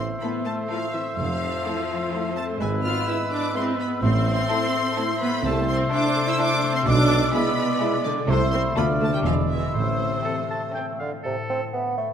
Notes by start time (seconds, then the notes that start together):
Already playing: A1 A2 A3 E4 C5 E6
0.00 C4
0.21 A3 B3 E4 A4 B5
0.45 A3 C5 A5
0.69 F3 A3 E4 A4 F5
0.93 E3 C4 E5
1.17 F1 F2 F3 F5
1.42 C4
1.65 A3 E4 A4
1.90 C5
2.13 A3 E4 A4
2.36 A3 C4 A5
2.60 G#1 G#2 G#3 B4 G#5 E6
2.84 B3 F4 F6
3.07 G#3 E4 B4 E6
3.31 D4 E4 D6
3.54 G#3 C4 E4 B4 C6
3.78 B3 B5
4.02 A1 A2 A3 C4 C5 C6
4.26 A3
4.50 A3 E4 A4 C5
4.74 A4
4.96 A3 E4 A4 C5
5.20 A3 B3 B5
5.44 C2 C3 A3 C5 A5 E6
5.67 A3 C4 C6
5.91 A3 D4 E4 A4 C5 D6
6.16 A4
6.28 E4 E6
6.39 A3 D4 E4 A4 C5 D6
6.63 A3
6.75 C4 C6
6.86 B1 B2 G#3 D4 D5 D6
7.10 G#3
7.33 G#3 B3 E4 G#4 D5 B5
7.58 G#4
7.81 G#3 E4 G#4 D5
8.04 D3 G#3 D5
8.28 C2 C3 A3 E4 A4 C5 E6
8.52 C4 E4 E5 C6
8.76 D2 D3 A3 B3 F4 A4 D5 B5 F6
9.00 A3 F4 D5 A5
9.13 G3 G5
9.24 E1 E2 E3 F3 G#3 D4 G#4 F5 E6
9.50 E3 E4 D5 E5
9.74 A1 A2 C3 A3 C5
9.99 A3
10.24 A3 C4 A4 C5
10.50 A4 A5
10.75 A3 C4 A4 C5 G5
10.99 D3 A3 F5
11.23 A2 C3 A4
11.49 A3 C4
11.73 B3 E4 E5
11.97 A3 C5